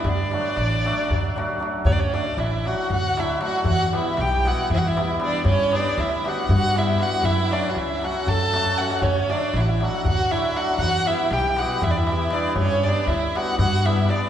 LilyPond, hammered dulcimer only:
\new Staff \with { instrumentName = "Hammered dulcimer" } { \time 7/8 \key d \major \tempo 4 = 118 r8 <fis a d' fis'>8 r8 <fis a d' fis'>8 r8 <fis a d' fis'>8 <fis a d' fis'>8 | r8 <fis a d' fis'>8 r8 <fis a d' fis'>8 r8 <fis a d' fis'>8 <fis a d' fis'>8 | r8 <g b e' g'>8 r8 <g b e' g'>8 r8 <g b e' g'>8 <g b e' g'>8 | r8 <g b d' g'>8 r8 <g b d' g'>8 r8 <g b d' g'>8 <g b d' g'>8 |
r8 <fis a cis' fis'>8 r8 <fis a cis' fis'>8 r8 <fis a cis' fis'>8 <fis a cis' fis'>8 | r8 <fis a d' fis'>8 r8 <fis a d' fis'>8 r8 <fis a d' fis'>8 <fis a d' fis'>8 | r8 <g b e' g'>8 r8 <g b e' g'>8 r8 <g b e' g'>8 <g b e' g'>8 | r8 <g b d' g'>8 r8 <g b d' g'>8 r8 <g b d' g'>8 <g b d' g'>8 | }